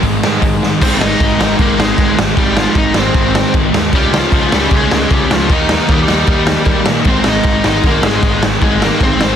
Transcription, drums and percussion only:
0.03 kick loud
0.03 open hi-hat medium
0.23 snare loud
0.42 kick loud
0.42 open hi-hat medium
0.63 snare medium
0.82 kick loud
0.82 crash loud
0.82 crash medium
1.01 snare loud
1.20 kick loud
1.20 crash medium
1.41 snare loud
1.59 kick loud
1.59 crash medium
1.80 snare loud
1.98 kick loud
1.98 crash medium
2.19 snare loud
2.37 kick loud
2.37 crash medium
2.57 snare loud
2.75 kick loud
2.75 crash medium
2.94 snare loud
3.14 kick loud
3.14 crash medium
3.35 snare loud
3.54 kick loud
3.54 crash medium
3.74 snare loud
3.93 kick loud
3.93 crash medium
4.14 snare loud
4.32 kick loud
4.32 crash medium
4.52 snare loud
4.71 kick loud
4.71 crash medium
4.91 snare loud
5.11 kick loud
5.11 crash medium
5.31 snare loud
5.50 kick loud
5.50 crash medium
5.69 snare loud
5.88 kick loud
5.88 crash medium
6.08 snare loud
6.27 kick loud
6.27 crash medium
6.47 snare loud
6.65 kick loud
6.65 crash medium
6.86 snare loud
7.04 kick loud
7.04 crash medium
7.24 snare loud
7.43 kick loud
7.43 crash medium
7.64 snare loud
7.83 kick loud
7.83 crash medium
8.03 snare loud
8.23 kick loud
8.23 crash medium
8.43 snare loud
8.61 kick loud
8.61 crash medium
8.82 snare loud
9.01 kick loud
9.01 crash medium
9.21 snare loud

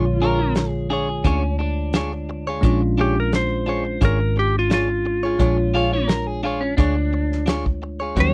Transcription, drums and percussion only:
0.55 snare loud
0.55 closed hi-hat medium
1.24 kick loud
1.24 closed hi-hat medium
1.93 snare loud
1.93 closed hi-hat medium
2.63 kick medium
2.63 closed hi-hat medium
3.32 snare medium
3.32 closed hi-hat medium
4.02 kick loud
4.02 closed hi-hat medium
4.70 snare loud
4.70 closed hi-hat medium
5.39 kick medium
5.39 closed hi-hat medium
6.09 snare loud
6.09 closed hi-hat medium
6.78 kick loud
6.78 closed hi-hat medium
7.32 snare soft
7.47 snare medium
7.47 closed hi-hat medium
7.66 kick medium
8.16 kick loud
8.16 closed hi-hat medium

